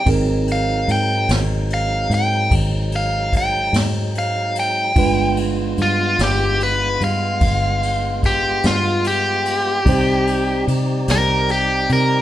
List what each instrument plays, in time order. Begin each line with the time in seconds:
0.06 fingered electric bass G#1, tonewheel organ F#3 G#3 C4 D#4, tine electric piano C4 D#4 G#4 A#4, kick, ride
0.48 ride
0.52 overdriven electric guitar F5
0.88 fingered electric bass G#2, overdriven electric guitar G5, ride
1.29 fingered electric bass G#1, snare, ride
1.70 overdriven electric guitar F5, ride
2.10 fingered electric bass G#2, ride
2.14 overdriven electric guitar G5
2.51 fingered electric bass G#1, kick, ride
2.92 overdriven electric guitar F5, ride
3.33 kick, ride
3.37 overdriven electric guitar G5
3.73 fingered electric bass G#2, snare, ride
4.15 overdriven electric guitar F5, ride
4.55 ride
4.60 overdriven electric guitar G5
4.95 fingered electric bass G1, tonewheel organ G#3 B3 F4, tine electric piano G#3 D4 F4 B4, kick, ride
5.37 ride
5.78 fingered electric bass G2, ride
5.82 overdriven electric guitar F4
6.19 fingered electric bass G1, snare, ride
6.23 overdriven electric guitar G4
6.61 overdriven electric guitar B4, ride
7.01 fingered electric bass G2, overdriven electric guitar F5, ride
7.41 fingered electric bass G1, kick, ride
7.83 ride
8.23 overdriven electric guitar G4, kick, snare, ride
8.63 fingered electric bass G2, overdriven electric guitar F4, snare, ride
9.04 overdriven electric guitar G4, ride
9.45 ride
9.84 fingered electric bass C2, tonewheel organ G3 C4 D#4 G4, tine electric piano C4 D#4 G4, kick, ride
9.89 tine electric piano C5
10.27 ride
10.68 fingered electric bass C3, ride
11.08 fingered electric bass C2, overdriven electric guitar A#4, snare, ride
11.49 overdriven electric guitar G4, ride
11.89 fingered electric bass C3, overdriven electric guitar A#4, ride